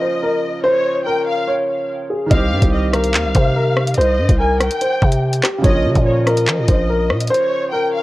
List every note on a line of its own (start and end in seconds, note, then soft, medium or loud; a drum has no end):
0.00 2.24 C#3 medium
0.00 2.26 F3 medium
0.00 2.28 A#3 medium
0.00 2.29 F4 medium
0.00 0.18 C5 medium
0.00 0.60 D#5 medium
0.23 0.39 A#4 medium
0.64 1.03 C5 loud
0.64 1.03 C#5 loud
1.06 1.45 A#4 medium
1.06 1.26 G5 medium
1.27 1.47 F5 medium
1.48 2.06 C#5 medium
2.10 2.26 G#4 medium
2.26 5.58 D#3 medium
2.26 5.60 G3 medium
2.31 2.53 C2 loud
2.31 5.62 C4 medium
2.31 2.90 D#5 medium
2.31 2.70 F5 loud
2.31 kick loud
2.31 closed hi-hat medium
2.37 5.63 G4 medium
2.52 2.62 G2 loud
2.62 3.16 C2 loud
2.62 kick medium
2.62 closed hi-hat medium
2.73 2.92 D#5 medium
2.93 3.32 A#4 medium
2.93 3.94 F5 medium
2.93 cross-stick loud
2.93 closed hi-hat medium
3.04 closed hi-hat medium
3.14 3.26 D#2 loud
3.14 clap loud
3.25 3.35 C2 loud
3.35 3.95 C3 loud
3.35 3.51 C5 medium
3.35 kick loud
3.35 closed hi-hat medium
3.56 3.72 A#4 medium
3.77 cross-stick loud
3.87 closed hi-hat medium
3.94 4.20 C2 loud
3.94 4.37 C5 loud
3.94 4.37 D#5 medium
3.94 closed hi-hat medium
4.01 closed hi-hat soft
4.18 4.28 G2 loud
4.29 4.69 C2 loud
4.29 kick medium
4.29 closed hi-hat medium
4.39 4.79 A#4 medium
4.39 4.59 G#5 medium
4.60 5.19 G5 medium
4.60 cross-stick loud
4.60 closed hi-hat medium
4.70 closed hi-hat medium
4.81 5.40 C5 medium
4.81 closed hi-hat medium
5.02 5.42 C3 loud
5.02 kick loud
5.12 closed hi-hat medium
5.33 closed hi-hat medium
5.43 5.60 G4 medium
5.43 cross-stick loud
5.43 clap loud
5.58 8.03 C#3 medium
5.58 8.03 F3 medium
5.63 5.87 A#1 loud
5.63 8.03 A#3 medium
5.63 6.23 C#5 loud
5.63 6.03 D#5 loud
5.63 kick loud
5.63 closed hi-hat medium
5.69 8.03 F4 medium
5.85 5.95 C#3 loud
5.95 6.49 A#2 loud
5.95 kick medium
5.95 closed hi-hat medium
6.06 6.26 C#5 medium
6.26 6.66 A#4 medium
6.26 7.27 D#5 medium
6.26 cross-stick loud
6.26 closed hi-hat medium
6.37 closed hi-hat medium
6.48 6.60 F3 loud
6.48 clap loud
6.58 6.68 A#2 loud
6.68 7.12 A#1 loud
6.68 6.85 C5 medium
6.68 kick loud
6.68 closed hi-hat medium
6.89 7.05 A#4 medium
7.10 7.30 A#2 loud
7.10 cross-stick loud
7.20 closed hi-hat medium
7.27 7.70 C5 loud
7.27 7.70 C#5 loud
7.27 closed hi-hat medium
7.34 closed hi-hat soft
7.72 8.03 A#4 medium
7.72 7.92 G5 medium
7.94 8.03 F5 medium